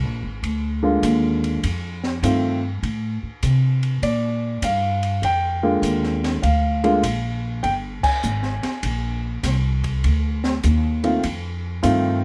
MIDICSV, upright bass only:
0, 0, Header, 1, 3, 480
1, 0, Start_track
1, 0, Tempo, 600601
1, 1303, Time_signature, 4, 2, 24, 8
1, 9786, End_track
2, 0, Start_track
2, 0, Title_t, "Upright bass"
2, 0, Program_c, 0, 32
2, 23, Note_on_c, 0, 34, 60
2, 177, Note_off_c, 0, 34, 0
2, 182, Note_on_c, 0, 32, 58
2, 332, Note_off_c, 0, 32, 0
2, 341, Note_on_c, 0, 38, 72
2, 807, Note_off_c, 0, 38, 0
2, 821, Note_on_c, 0, 39, 91
2, 1287, Note_off_c, 0, 39, 0
2, 1307, Note_on_c, 0, 41, 82
2, 1770, Note_off_c, 0, 41, 0
2, 1779, Note_on_c, 0, 43, 91
2, 2246, Note_off_c, 0, 43, 0
2, 2259, Note_on_c, 0, 45, 78
2, 2558, Note_off_c, 0, 45, 0
2, 2740, Note_on_c, 0, 48, 99
2, 3206, Note_off_c, 0, 48, 0
2, 3215, Note_on_c, 0, 46, 78
2, 3683, Note_off_c, 0, 46, 0
2, 3694, Note_on_c, 0, 43, 87
2, 4162, Note_off_c, 0, 43, 0
2, 4172, Note_on_c, 0, 41, 71
2, 4641, Note_off_c, 0, 41, 0
2, 4652, Note_on_c, 0, 39, 83
2, 5121, Note_off_c, 0, 39, 0
2, 5139, Note_on_c, 0, 38, 86
2, 5605, Note_off_c, 0, 38, 0
2, 5619, Note_on_c, 0, 34, 91
2, 6084, Note_off_c, 0, 34, 0
2, 6100, Note_on_c, 0, 31, 86
2, 6398, Note_off_c, 0, 31, 0
2, 6583, Note_on_c, 0, 32, 89
2, 6879, Note_off_c, 0, 32, 0
2, 7057, Note_on_c, 0, 34, 82
2, 7523, Note_off_c, 0, 34, 0
2, 7539, Note_on_c, 0, 36, 85
2, 8005, Note_off_c, 0, 36, 0
2, 8024, Note_on_c, 0, 38, 80
2, 8487, Note_off_c, 0, 38, 0
2, 8502, Note_on_c, 0, 39, 97
2, 8967, Note_off_c, 0, 39, 0
2, 8984, Note_on_c, 0, 41, 82
2, 9447, Note_off_c, 0, 41, 0
2, 9461, Note_on_c, 0, 43, 97
2, 9786, Note_off_c, 0, 43, 0
2, 9786, End_track
3, 0, Start_track
3, 0, Title_t, "Muted upright bass strokes"
3, 2579, Note_on_c, 9, 29, 34
3, 2659, Note_off_c, 9, 29, 0
3, 6421, Note_on_c, 9, 29, 34
3, 6501, Note_off_c, 9, 29, 0
3, 6908, Note_on_c, 9, 29, 43
3, 6988, Note_off_c, 9, 29, 0
3, 9786, End_track
0, 0, End_of_file